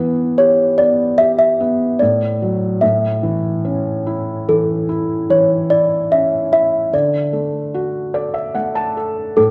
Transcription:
0.00 1.97 E3 medium
0.00 0.78 B3 medium
0.00 0.41 B4 medium
0.38 1.19 G4 medium
0.38 0.80 C#5 medium
0.78 1.59 B3 medium
0.78 1.20 D5 medium
1.18 1.99 G4 soft
1.18 1.27 E5 loud
1.39 2.02 E5 loud
1.60 2.00 B3 soft
1.99 2.81 A2 medium
1.99 2.84 D5 medium
2.42 2.82 F#3 soft
2.81 5.26 A2 medium
2.81 4.02 E5 medium
3.23 4.47 E3 medium
3.65 5.25 C#4 soft
4.07 4.87 E4 soft
4.48 5.28 E3 soft
4.48 5.33 A4 medium
4.89 5.68 E4 medium
5.30 6.89 E3 medium
5.30 5.49 C#5 medium
5.70 6.51 E4 soft
5.70 6.12 D5 medium
6.11 6.91 C#4 soft
6.11 6.52 E5 medium
6.52 6.92 E4 soft
6.52 6.95 E5 medium
6.93 9.33 D3 medium
6.93 8.93 D5 medium
7.33 8.54 A3 soft
7.74 9.33 F#4 soft
8.14 8.95 A4 medium
8.14 8.34 D5 medium
8.34 8.54 E5 medium
8.55 9.35 A3 soft
8.55 8.74 F#5 medium
8.75 9.33 A5 medium
8.97 9.36 A4 medium
9.37 9.51 A2 medium
9.37 9.51 A4 medium

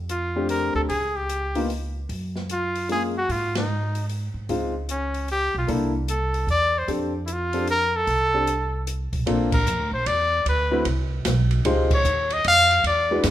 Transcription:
0.00 0.71 F2 medium
0.09 0.48 F4 medium
0.09 closed hi-hat soft
0.36 0.87 A3 medium
0.36 0.87 C4 medium
0.36 0.87 D4 medium
0.36 0.87 G4 medium
0.49 0.74 A#4 medium
0.49 open hi-hat soft
0.75 0.88 D2 medium
0.75 0.82 A4 medium
0.89 2.05 C#2 medium
0.89 1.18 G#4 medium
0.89 kick soft
0.89 open hi-hat soft
1.16 1.70 G4 medium
1.29 closed hi-hat soft
1.55 1.68 A#3 medium
1.55 1.68 B3 soft
1.55 1.68 D#4 soft
1.55 1.68 F4 medium
1.55 open hi-hat soft
1.70 open hi-hat soft
2.09 3.25 F#2 medium
2.09 kick soft
2.09 open hi-hat soft
2.36 snare soft
2.50 2.88 F4 medium
2.50 closed hi-hat soft
2.75 open hi-hat soft
2.89 3.12 G#3 medium
2.89 3.12 A#3 soft
2.89 3.13 C#4 soft
2.89 3.13 F4 medium
2.89 3.03 G#4 medium
2.89 open hi-hat soft
3.18 3.33 F#4 medium
3.29 4.31 G#2 medium
3.29 3.56 F4 medium
3.29 kick soft
3.29 open hi-hat soft
3.55 4.07 D#4 medium
3.55 snare medium
3.55 ride medium
3.95 open hi-hat soft
4.09 open hi-hat soft
4.34 4.47 G#2 medium
4.49 5.50 C#2 medium
4.49 4.72 G#3 medium
4.49 4.72 C4 medium
4.49 4.72 D#4 soft
4.49 4.72 F4 medium
4.49 kick soft
4.49 open hi-hat soft
4.89 5.27 C#4 medium
4.89 closed hi-hat soft
5.14 open hi-hat soft
5.28 5.54 G4 loud
5.28 open hi-hat soft
5.55 5.68 B1 medium
5.55 5.69 F4 medium
5.67 6.44 C2 medium
5.67 5.91 A#3 medium
5.67 5.91 D4 medium
5.67 5.91 E4 medium
5.67 5.91 A4 medium
5.67 kick soft
5.67 open hi-hat soft
6.08 6.46 A4 medium
6.08 closed hi-hat soft
6.34 open hi-hat soft
6.47 6.84 E2 medium
6.47 6.80 D5 loud
6.47 open hi-hat soft
6.78 6.90 C5 medium
6.88 8.03 F2 medium
6.88 7.11 C4 medium
6.88 7.11 D4 medium
6.88 7.11 G4 medium
6.88 7.11 A4 medium
6.88 kick soft
6.88 open hi-hat soft
7.26 7.34 E4 medium
7.26 closed hi-hat soft
7.33 7.70 F4 medium
7.53 7.66 C4 medium
7.53 7.67 D4 medium
7.53 7.66 G4 medium
7.53 7.66 A4 medium
7.53 open hi-hat soft
7.67 7.98 A#4 loud
7.67 open hi-hat soft
7.96 8.88 A4 medium
8.07 9.08 C2 medium
8.07 kick soft
8.07 open hi-hat soft
8.34 8.46 C4 medium
8.34 8.46 D4 medium
8.34 8.46 G4 soft
8.34 8.46 A4 medium
8.47 closed hi-hat soft
8.87 closed hi-hat medium
9.13 9.26 B1 medium
9.13 kick medium
9.13 open hi-hat soft
9.26 9.65 A#1 medium
9.26 9.50 A#3 medium
9.26 9.49 C4 medium
9.26 9.50 D4 medium
9.26 9.50 F4 medium
9.26 9.50 A4 medium
9.26 kick soft
9.26 ride medium
9.52 9.90 A#4 medium
9.52 kick medium
9.52 crash medium
9.66 9.79 F2 medium
9.66 hi-hat pedal medium
9.79 9.91 D2 medium
9.91 10.04 A#1 medium
9.91 10.08 C5 medium
10.06 10.45 E2 medium
10.06 10.46 D5 loud
10.06 kick soft
10.06 ride medium
10.46 10.84 D2 medium
10.46 10.84 B4 medium
10.46 kick soft
10.46 ride medium
10.71 10.84 A3 medium
10.71 10.84 C4 medium
10.71 10.84 E4 medium
10.71 10.84 F#4 medium
10.71 10.84 B4 medium
10.85 11.24 C2 medium
10.85 kick soft
10.85 ride medium
11.25 11.64 B1 medium
11.25 kick soft
11.25 snare medium
11.25 hi-hat pedal medium
11.25 ride medium
11.51 ride soft
11.65 12.04 C#2 medium
11.65 11.88 G#3 medium
11.65 11.88 D#4 medium
11.65 11.89 F4 medium
11.65 11.88 G4 medium
11.65 11.89 C5 medium
11.65 kick soft
11.65 ride medium
11.91 12.35 C#5 medium
11.91 kick medium
11.91 crash medium
12.04 12.43 D#2 medium
12.04 hi-hat pedal medium
12.30 12.46 D#5 medium
12.30 ride soft
12.44 12.83 F2 medium
12.44 12.83 F5 loud
12.44 kick soft
12.44 ride medium
12.71 ride soft
12.84 13.23 E2 medium
12.84 13.23 D5 medium
12.84 kick soft
12.84 ride medium
13.11 13.23 G#3 medium
13.11 13.23 D4 medium
13.11 13.23 E4 medium
13.11 13.24 F#4 medium
13.11 13.24 B4 medium
13.24 13.30 F#2 loud
13.24 kick soft
13.24 snare medium
13.24 hi-hat pedal medium
13.24 ride medium

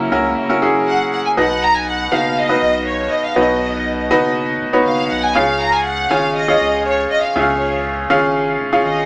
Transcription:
0.00 1.35 C#3 medium
0.00 1.35 F#3 medium
0.00 1.35 A#3 medium
0.00 0.12 C#4 medium
0.00 0.12 E4 medium
0.00 1.33 E4 medium
0.00 0.12 F#4 medium
0.00 0.12 A#4 medium
0.12 0.35 C#2 loud
0.12 0.38 C#4 medium
0.12 0.38 E4 medium
0.12 0.38 F#4 medium
0.12 0.38 A#4 medium
0.49 0.58 C#4 medium
0.49 0.58 E4 medium
0.49 0.58 F#4 medium
0.49 0.58 A#4 medium
0.62 1.14 C#4 medium
0.62 1.15 E4 medium
0.62 1.15 F#4 medium
0.62 1.15 G#4 medium
0.87 1.10 F#5 medium
1.12 1.24 F#5 medium
1.26 1.31 G#5 medium
1.37 2.08 B1 loud
1.37 2.08 B2 medium
1.37 1.90 B3 medium
1.37 1.89 D#4 medium
1.37 1.89 F#4 medium
1.37 1.90 B4 medium
1.37 1.90 D#5 medium
1.37 1.60 F#5 loud
1.63 1.75 A#5 loud
1.75 1.87 G#5 loud
1.88 2.11 F#5 medium
2.12 2.58 F#1 loud
2.12 2.38 B3 medium
2.12 2.38 D#4 medium
2.12 2.38 F#4 medium
2.12 2.38 B4 medium
2.12 2.38 F5 medium
2.38 2.87 D#5 loud
2.49 3.10 B3 medium
2.49 3.10 D#4 medium
2.49 3.10 F#4 medium
2.49 3.10 B4 medium
2.49 3.10 D#5 medium
2.62 3.08 B1 loud
2.88 3.10 C#5 medium
3.12 3.24 D#5 medium
3.24 3.36 F5 medium
3.36 4.12 B1 loud
3.36 4.07 B2 medium
3.36 3.89 B3 medium
3.36 3.89 D#4 medium
3.36 3.89 F#4 medium
3.36 3.89 B4 medium
3.36 3.42 C#5 medium
3.36 4.11 D#5 medium
3.42 3.92 D#5 medium
4.11 4.57 F#1 loud
4.11 4.55 B3 medium
4.11 4.55 D#4 medium
4.11 4.55 F#4 medium
4.11 4.55 B4 medium
4.11 4.55 D#5 loud
4.61 4.84 F1 medium
4.73 5.17 B3 medium
4.73 5.17 D#4 medium
4.73 5.17 F#4 medium
4.73 5.17 B4 medium
4.73 5.17 C#5 medium
4.86 5.09 F#1 loud
4.86 5.09 F5 loud
5.11 5.34 B1 medium
5.11 5.24 F#5 loud
5.23 5.36 G#5 loud
5.35 6.07 C#2 loud
5.35 6.07 C#3 medium
5.35 5.88 C#4 medium
5.35 5.88 F4 medium
5.35 5.88 G#4 medium
5.35 5.88 C#5 medium
5.35 5.60 F5 loud
5.35 5.88 F5 medium
5.61 5.73 A#5 loud
5.73 5.86 G#5 loud
5.86 6.09 F#5 loud
6.10 6.57 G#1 loud
6.10 6.37 C#4 medium
6.10 6.37 F4 medium
6.10 6.37 G#4 medium
6.10 6.37 C#5 medium
6.10 6.36 F5 loud
6.10 6.37 G#5 medium
6.35 6.82 D#5 loud
6.48 7.09 C#4 medium
6.48 7.09 F4 medium
6.48 7.09 G#4 medium
6.48 7.10 C#5 medium
6.48 7.10 F5 medium
6.61 7.07 C#2 medium
6.86 7.11 C#5 medium
7.11 7.22 D#5 medium
7.23 7.35 F5 medium
7.36 8.07 C#2 loud
7.36 8.06 C#3 medium
7.36 7.88 C#4 medium
7.36 7.88 F4 medium
7.36 7.88 G#4 medium
7.36 8.10 C#5 medium
7.36 7.88 C#5 medium
7.36 7.42 E5 medium
7.42 7.91 F5 medium
8.10 8.57 G#1 medium
8.10 8.54 C#4 medium
8.10 8.54 F4 medium
8.10 8.54 G#4 medium
8.10 8.54 C#5 medium
8.10 8.54 F5 medium
8.60 8.83 F1 medium
8.73 9.05 C#4 medium
8.73 9.05 F4 medium
8.73 9.05 G#4 medium
8.73 9.05 C#5 medium
8.73 9.05 F5 medium
8.85 9.05 G#1 loud
8.85 9.05 D#5 medium

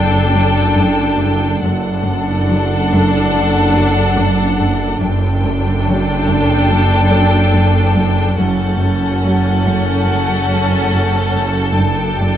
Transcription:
0.00 1.59 F#1 medium
0.00 0.20 F#2 soft
0.00 1.60 F#2 soft
0.00 1.59 D4 medium
0.00 1.60 A4 medium
0.00 1.59 G5 medium
0.36 0.62 F#3 soft
0.79 1.04 F#2 medium
1.21 1.47 F#2 soft
1.63 4.98 F#1 medium
1.63 1.89 F#2 medium
1.63 4.98 F#2 medium
1.63 4.97 D4 medium
1.63 4.98 A4 medium
1.63 4.97 F#5 medium
2.06 2.31 F#2 soft
2.49 2.74 F#3 soft
2.91 3.16 F#2 medium
3.33 3.58 F#2 soft
3.75 4.00 F#3 soft
4.17 4.43 F#2 medium
4.60 4.85 F#2 soft
5.00 8.35 F#1 medium
5.00 5.27 F#2 medium
5.00 8.36 F#2 medium
5.00 8.35 D4 medium
5.00 8.36 A4 medium
5.00 8.36 G5 medium
5.45 5.70 F#2 soft
5.87 6.12 F#3 soft
6.29 6.54 F#2 medium
6.70 6.96 F#2 soft
7.13 7.38 F#3 soft
7.55 7.80 F#2 medium
7.97 8.22 F#2 soft
8.39 12.37 F#1 medium
8.39 12.37 F#2 soft
8.39 8.65 F#2 medium
8.39 11.73 C#4 medium
8.39 12.37 A4 medium
8.39 11.73 F#5 soft
8.39 12.37 G6 soft
8.39 12.37 A6 soft
8.82 9.08 F#2 soft
9.25 9.50 F#3 soft
9.66 9.92 F#2 medium
10.09 10.34 F#2 soft
10.09 12.37 C#7 soft
10.51 10.77 F#3 soft
10.93 11.19 F#2 soft
11.36 11.61 F#2 soft
11.77 12.03 F#2 soft
11.77 12.37 D4 soft
11.77 12.37 G5 soft
12.20 12.37 F#2 soft

